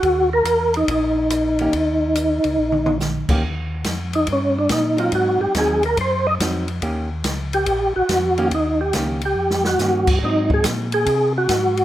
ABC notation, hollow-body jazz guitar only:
X:1
M:4/4
L:1/8
Q:"Swing" 1/4=141
K:Ab
V:1 name="Hollow-body jazz guitar"
z6 z [E,B,DG] | z6 z [E,B,DG] | z6 z [_G,CE]- | [_G,CE]2 [G,CE] z3 [G,CE] z |
[E,B,DG] z6 [E,B,DG] | z2 [E,B,DG] z3 [E,B,DG] z | [_G,CE]3 z4 z |]